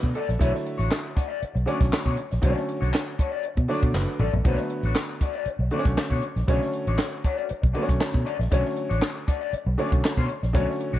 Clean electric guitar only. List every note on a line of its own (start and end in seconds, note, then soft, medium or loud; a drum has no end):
0.04 muted clean electric guitar stroke soft
0.16 0.32 A3 medium
0.16 0.29 D4 medium
0.16 0.29 F#4 loud
0.16 0.29 D5 loud
0.29 muted clean electric guitar stroke soft
0.40 0.57 A3 medium
0.40 0.53 D4 medium
0.40 0.53 F#4 loud
0.40 0.52 C#5 medium
0.54 muted clean electric guitar stroke soft
0.66 muted clean electric guitar stroke soft
0.78 0.89 A3 medium
0.78 0.90 D4 medium
0.78 0.90 F#4 medium
0.78 0.90 C#5 medium
0.91 muted clean electric guitar stroke soft
1.03 muted clean electric guitar stroke medium
1.15 1.28 A3 medium
1.15 1.28 D4 medium
1.15 1.27 F#4 medium
1.15 1.27 D5 medium
1.28 1.40 A3 medium
1.28 1.40 D4 medium
1.28 1.41 F#4 medium
1.28 1.41 D5 medium
1.41 muted clean electric guitar stroke soft
1.55 muted clean electric guitar stroke soft
1.67 1.83 A3 medium
1.67 1.80 D4 medium
1.67 1.80 F#4 medium
1.67 1.80 D5 medium
1.80 muted clean electric guitar stroke soft
1.93 muted clean electric guitar stroke soft
2.06 2.16 A3 medium
2.06 2.17 D4 medium
2.06 2.17 F#4 medium
2.06 2.18 C#5 medium
2.18 muted clean electric guitar stroke soft
2.31 muted clean electric guitar stroke soft
2.43 2.63 A3 medium
2.43 2.57 D4 medium
2.43 2.57 F#4 medium
2.43 2.56 C#5 medium
2.57 muted clean electric guitar stroke medium
2.68 muted clean electric guitar stroke soft
2.81 2.92 A3 medium
2.81 2.93 D4 medium
2.81 2.93 F#4 medium
2.81 2.93 C#5 medium
2.93 muted clean electric guitar stroke soft
3.08 muted clean electric guitar stroke medium
3.19 3.32 A3 medium
3.19 3.32 D4 medium
3.19 3.32 F#4 medium
3.19 3.31 C#5 medium
3.32 3.44 A3 medium
3.32 3.44 D4 medium
3.32 3.44 F#4 medium
3.32 3.44 D5 medium
3.45 muted clean electric guitar stroke soft
3.57 muted clean electric guitar stroke medium
3.69 3.86 A3 medium
3.69 3.83 D4 medium
3.69 3.83 F#4 medium
3.69 3.83 D5 medium
3.83 muted clean electric guitar stroke soft
3.94 muted clean electric guitar stroke soft
4.08 muted clean electric guitar stroke soft
4.20 4.36 A3 medium
4.20 4.33 D4 medium
4.20 4.32 F#4 loud
4.20 4.33 D5 loud
4.33 muted clean electric guitar stroke soft
4.46 4.66 A3 medium
4.46 4.59 D4 medium
4.46 4.58 F#4 medium
4.46 4.58 C#5 medium
4.59 muted clean electric guitar stroke soft
4.71 muted clean electric guitar stroke soft
4.85 4.96 A3 medium
4.85 4.96 D4 medium
4.85 4.96 F#4 medium
4.85 4.97 C#5 medium
4.97 muted clean electric guitar stroke soft
5.09 muted clean electric guitar stroke medium
5.22 5.35 A3 medium
5.22 5.35 D4 medium
5.22 5.35 F#4 medium
5.22 5.34 D5 medium
5.35 5.46 A3 soft
5.35 5.46 D4 medium
5.35 5.47 F#4 medium
5.35 5.47 D5 medium
5.48 muted clean electric guitar stroke soft
5.61 muted clean electric guitar stroke soft
5.72 5.89 A3 medium
5.72 5.86 D4 medium
5.72 5.86 F#4 medium
5.72 5.86 D5 medium
5.86 muted clean electric guitar stroke soft
5.98 muted clean electric guitar stroke soft
6.12 6.23 A3 medium
6.12 6.24 D4 medium
6.12 6.24 F#4 medium
6.12 6.24 C#5 medium
6.24 muted clean electric guitar stroke soft
6.38 muted clean electric guitar stroke soft
6.49 6.65 A3 medium
6.49 6.62 D4 medium
6.49 6.61 F#4 medium
6.49 6.61 C#5 medium
6.62 muted clean electric guitar stroke soft
6.75 muted clean electric guitar stroke soft
6.88 6.98 A3 medium
6.88 6.98 D4 medium
6.88 6.99 F#4 medium
6.88 6.99 C#5 medium
6.99 muted clean electric guitar stroke soft
7.12 muted clean electric guitar stroke medium
7.24 7.38 A3 medium
7.24 7.37 D4 medium
7.24 7.36 F#4 medium
7.24 7.37 C#5 medium
7.37 7.48 A3 medium
7.37 7.48 D4 medium
7.37 7.49 F#4 medium
7.37 7.49 D5 medium
7.49 muted clean electric guitar stroke soft
7.62 muted clean electric guitar stroke soft
7.73 7.91 A3 medium
7.73 7.87 D4 medium
7.73 7.87 F#4 medium
7.73 7.87 D5 medium
7.88 muted clean electric guitar stroke soft
8.00 muted clean electric guitar stroke soft
8.14 muted clean electric guitar stroke soft
8.25 8.42 A3 medium
8.25 8.39 D4 medium
8.25 8.38 F#4 loud
8.25 8.38 D5 loud
8.39 muted clean electric guitar stroke soft
8.51 8.68 A3 medium
8.51 8.64 D4 medium
8.51 8.64 F#4 medium
8.51 8.63 C#5 medium
8.65 muted clean electric guitar stroke soft
8.77 muted clean electric guitar stroke soft
8.89 9.02 A3 medium
8.89 9.02 D4 medium
8.89 9.02 F#4 medium
8.89 9.02 C#5 medium
9.03 muted clean electric guitar stroke soft
9.15 muted clean electric guitar stroke medium
9.27 9.41 A3 medium
9.27 9.41 D4 medium
9.27 9.40 F#4 medium
9.27 9.40 D5 medium
9.41 9.52 A3 medium
9.41 9.52 D4 medium
9.41 9.52 F#4 medium
9.41 9.53 D5 medium
9.53 muted clean electric guitar stroke soft
9.67 muted clean electric guitar stroke soft
9.78 9.95 A3 medium
9.78 9.92 D4 medium
9.78 9.91 F#4 medium
9.78 9.91 D5 medium
9.92 muted clean electric guitar stroke soft
10.04 muted clean electric guitar stroke soft
10.18 10.28 A3 medium
10.18 10.29 D4 medium
10.18 10.29 F#4 medium
10.18 10.30 C#5 medium
10.30 muted clean electric guitar stroke soft
10.43 muted clean electric guitar stroke soft
10.53 10.70 A3 medium
10.53 10.68 D4 medium
10.53 10.67 F#4 medium
10.53 10.67 C#5 medium
10.68 muted clean electric guitar stroke soft
10.80 muted clean electric guitar stroke soft
10.93 10.99 A3 medium
10.93 10.99 D4 medium
10.93 10.99 F#4 medium
10.93 10.99 C#5 medium